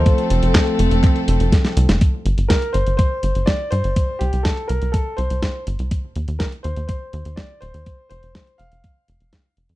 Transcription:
<<
  \new Staff \with { instrumentName = "Grand piano" } { \time 4/4 \key g \minor \tempo 4 = 123 <a' c''>2. r4 | r4 bes'8 c''8 c''4 d''8 c''8~ | c''8 g'8 a'8 bes'8 a'8 c''4 r8 | r4 bes'8 c''8 c''4 d''8 c''8~ |
c''8 c''4 f''2 r8 | }
  \new Staff \with { instrumentName = "String section" } { \time 4/4 \key g \minor <f a c' a'>1 | r1 | r1 | r1 |
r1 | }
  \new Staff \with { instrumentName = "Analog synth bass" } { \clef bass \time 4/4 \key g \minor r8 f,,16 f,,16 r8 f,,16 f,,16 r8 f,,16 f,,16 r8 c,16 f,,16 | r8 g,,16 g,,16 r8 g,,16 g,,16 r8 g,,16 g,,16 r8 g,16 g,,16 | r8 c,16 c,16 r8 c,16 c,16 r8 c,16 c,16 r8 g,,16 c,16 | r8 ees,16 ees,16 r8 ees,16 ees,16 r8 ees,16 ees,16 r8 ees,,16 ees,16 |
r8 f,,16 f,,16 r8 f,,16 f,,16 r8 f,,16 f,,16 r8 f,,16 f,16 | }
  \new DrumStaff \with { instrumentName = "Drums" } \drummode { \time 4/4 <hh bd>16 hh16 hh16 hh16 <hc hh bd sn>16 hh16 hh16 hh16 <hc hh bd>16 hh16 hh16 hh16 <hh bd sn>16 <hh sn>16 hh16 <hh sn>16 | <hh bd>8 hh16 hh16 <hh bd sn>16 hh16 hh16 hh16 <hh bd>8 hh16 hh16 <hh bd sn>8 hh16 hh16 | <hh bd>8 hh16 hh16 <hh bd sn>16 hh16 hh16 hh16 <hh bd>8 hh16 hh16 <hh bd sn>8 hh16 hh16 | <hh bd>8 hh16 hh16 <hh bd sn>16 hh16 hh16 hh16 <hh bd>8 hh16 hh16 <hh bd sn>8 hh16 hh16 |
<hh bd>8 hh16 hh16 <hh bd sn>16 hh16 hh16 hh16 <hh bd>8 hh16 hh16 <hh bd sn>8 hh16 hh16 | }
>>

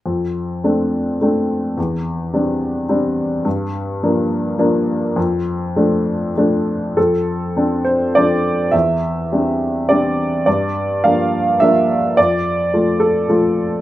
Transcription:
<<
  \new Staff \with { instrumentName = "Upright piano" } { \time 3/4 \key f \major \tempo 4 = 104 r2. | r2. | r2. | r2. |
a'4. c''8 d''4 | e''2 d''4 | d''4 f''4 e''4 | d''4. a'8 r4 | }
  \new Staff \with { instrumentName = "Upright piano" } { \time 3/4 \key f \major f,4 <a c' d'>4 <a c' d'>4 | e,4 <g c' d'>4 <g c' d'>4 | g,4 <f bes d'>4 <f bes d'>4 | f,4 <f a d'>4 <f a d'>4 |
f,4 <f c' d'>4 <f c' d'>4 | e,4 <g c' d'>4 <g c' d'>4 | g,4 <f bes d'>4 <f bes d'>4 | f,4 <f a f'>4 <f a f'>4 | }
>>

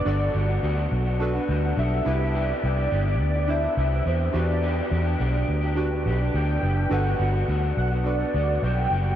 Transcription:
<<
  \new Staff \with { instrumentName = "Soft synth lead" } { \time 4/4 \key g \major \tempo 4 = 105 d''8 r2 r8 e''4 | d''4. d''8 e''4 c''8 d''8~ | d''8 r2 r8 g''4 | fis''4. fis''8 d''4 g''4 | }
  \new Staff \with { instrumentName = "Synth keys" } { \time 4/4 \key g \major <d' fis' a' d''>4~ <d' fis' a' d''>16 r8. <d' fis' a' b'>4~ <d' fis' a' b'>16 r16 <d' e' g' b'>8~ | <d' e' g' b'>4 r4 <d' e' g' c''>4~ <d' e' g' c''>16 r16 <d' fis' g' b'>8~ | <d' fis' g' b'>4 r4 <d' fis' g' b'>4~ <d' fis' g' b'>16 r8. | <d' fis' a' b'>4~ <d' fis' a' b'>16 r8. <d' fis' a' b'>4~ <d' fis' a' b'>16 r8. | }
  \new Staff \with { instrumentName = "Clean electric guitar" } { \time 4/4 \key g \major <g b d' fis'>8 <g b d' fis'>16 <b d' fis'>16 <g b d' fis'>16 <b d' fis'>8 <b d' fis'>8 <b d' fis'>16 <g b d' fis'>16 <b d' fis'>16 <g b d' fis'>8 <c b e' g'>16 <b e' g'>16 | <c b e' g'>8 <c b e' g'>16 <b e' g'>16 <c b e' g'>16 <b e' g'>8 <b e' g'>8 <b e' g'>16 <c b e' g'>16 <b e' g'>16 <c b e' g'>8 <e b d' g'>16 <b d' g'>16 | <e b d' g'>8 <e b d' g'>16 <b d' g'>16 <e b d' g'>16 <b d' g'>8 <b d' g'>8 <b d' g'>16 <e b d' g'>16 <b d' g'>16 <e b d' g'>8 <e b d' g'>8 | <g b d' fis'>8 <g b d' fis'>16 <b d' fis'>16 <g b d' fis'>16 <b d' fis'>8 <b d' fis'>8 <b d' fis'>16 <g b d' fis'>16 <b d' fis'>16 <g b d' fis'>8 <g b d' fis'>8 | }
  \new Staff \with { instrumentName = "Fingered electric bass" } { \clef bass \time 4/4 \key g \major g,,8 g,,8 d,8 b,,4 d,8 b,,8 c,8~ | c,8 c,8 g,,8 d,4 c,8 e,8 e,8~ | e,8 e,8 b,,8 d,4 b,,8 d,8 fis,,8 | g,,8 g,,8 d,8 b,,4 d,8 b,,8 fis,,8 | }
>>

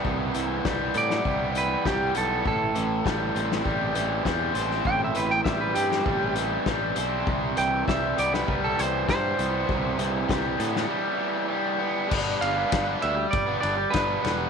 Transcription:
<<
  \new Staff \with { instrumentName = "Clean electric guitar" } { \time 4/4 \key c \lydian \tempo 4 = 100 r4. d''4 b'8 g'8 a'8 | a'2. r4 | g''16 e''16 b'16 g''16 e''16 b'16 g'4 r4. | r8 g''8 e''8 d''16 b'8 a'16 c''8 c''4~ |
c''2 r2 | r8 f''4 e''8 d''8 d''8 b'4 | }
  \new Staff \with { instrumentName = "Overdriven electric guitar" } { \time 4/4 \key c \lydian <c e g b>8 e8 g8 b8 g8 e8 g8 b8 | a,8 e8 g8 c'8 g8 e8 g8 c'8 | a,8 e8 g8 c'8 g8 e8 g8 c'8 | c8 e8 g8 b8 g8 e8 g8 b8 |
c8 e8 g8 b8 g8 e8 g8 b8 | <g b d' b'>8. <b d' b'>16 <g b d' b'>16 <b d' b'>16 <g b d' b'>8. <b d' b'>16 <g b d' b'>8 <g b d' b'>8 <g b d' b'>8 | }
  \new Staff \with { instrumentName = "Picked electric bass" } { \clef bass \time 4/4 \key c \lydian c,8 c,8 c,8 a,8 c,4 c,8 b,,8 | a,,8 a,,8 a,,8 a,,8 a,,8 a,,8 e,8 a,,8 | a,,8 a,,8 a,,8 g,8 a,,4 a,,8 b,,8 | c,8 c,8 c,8 c,8 c,8 c,8 g,8 c,8 |
c,8 c,8 c,8 a,8 r2 | g,,8 g,,8 g,,8 d,8 g,,8 g,,8 g,,8 e,,8 | }
  \new DrumStaff \with { instrumentName = "Drums" } \drummode { \time 4/4 bd8 hh8 <bd sn>8 hh16 sn16 bd8 hh8 <bd sn>8 hh8 | bd8 hh8 <bd sn>8 hh16 sn16 bd8 hh8 <bd sn>8 hh16 sn16 | bd8 hh8 <bd sn>8 hh16 sn16 bd8 hh8 <bd sn>8 hh8 | bd8 hh8 <bd sn>8 hh16 sn16 bd8 hh8 <bd sn>8 hh8 |
bd8 hh8 <bd sn>8 hh16 sn16 r4 r4 | <cymc bd>8 cymr8 <bd cymr sn>8 cymr8 <bd cymr>8 cymr8 <bd cymr sn>8 <cymr sn>8 | }
>>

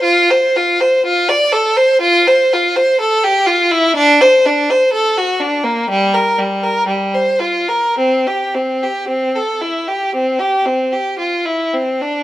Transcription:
\new Staff \with { instrumentName = "Violin" } { \time 4/4 \key f \major \tempo 4 = 60 f'16 c''16 f'16 c''16 f'16 d''16 a'16 c''16 f'16 c''16 f'16 c''16 a'16 g'16 f'16 e'16 | d'16 c''16 d'16 c''16 a'16 fis'16 d'16 bes16 g16 bes'16 g16 bes'16 g16 c''16 f'16 bes'16 | c'16 g'16 c'16 g'16 c'16 a'16 e'16 g'16 c'16 g'16 c'16 g'16 f'16 e'16 c'16 d'16 | }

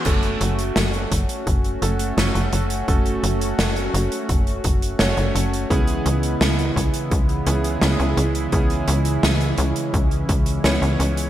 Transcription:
<<
  \new Staff \with { instrumentName = "Electric grand piano" } { \time 4/4 \key fis \minor \tempo 4 = 85 <a cis' fis' a'>2~ <a cis' fis' a'>8 <a cis' fis' a'>8 <a cis' fis' a'>4 | <a cis' fis' a'>2. <a cis' fis' cis''>4 | <b cis' e' gis'>2~ <b cis' e' gis'>8 <b cis' e' gis'>8 <b cis' e' gis'>4 | <b cis' e' gis'>2. <b cis' e' cis''>4 | }
  \new Staff \with { instrumentName = "Analog synth pad" } { \time 4/4 \key fis \minor << { <a fis'>1~ | <a fis'>1 | <cis e gis e'>1~ | <cis e gis e'>1 | } \\ { cis'1~ | cis'1 | b1 | cis'1 | } >> }
  \new Staff \with { instrumentName = "Analog synth bass" } { \clef bass \time 4/4 \key fis \minor fis,,8 fis,,8 fis,,8 fis,,16 r16 fis,,8 fis,,8 fis,,16 fis,,16 fis,,8 | fis,,8 fis,,8 fis,,8 fis,,16 r16 fis,,8 fis,,8 fis,,16 fis,,16 fis,,8 | cis,8 cis,8 cis,8 cis,16 r16 cis,8 cis,8 cis,16 cis,16 cis,8 | cis,8 cis,8 cis,8 cis,16 r16 cis,8 cis,8 cis,16 cis,16 cis,8 | }
  \new DrumStaff \with { instrumentName = "Drums" } \drummode { \time 4/4 <cymc hh bd>16 hh16 hh16 hh16 <hh sn>16 hh16 <hh bd>16 hh16 <hh bd>16 hh16 hh16 hh16 <hh sn>16 hh16 hh16 hh16 | <hh bd>16 hh16 hh16 hh16 <hh sn>16 hh16 hh16 hh16 <hh bd>16 hh16 <hh bd>16 hh16 <hh sn>16 hh16 hh16 hh16 | <hh bd>16 hh16 hh16 hh16 <hh sn>16 hh16 <hh bd>16 hh16 <hh bd>16 hh16 hh16 hh16 <hh sn>16 hh16 hh16 hh16 | <hh bd>16 hh16 hh16 hh16 <hh sn>16 hh16 hh16 hh16 <hh bd>16 hh16 <hh bd>16 hh16 <hh sn>16 hh16 hh16 hh16 | }
>>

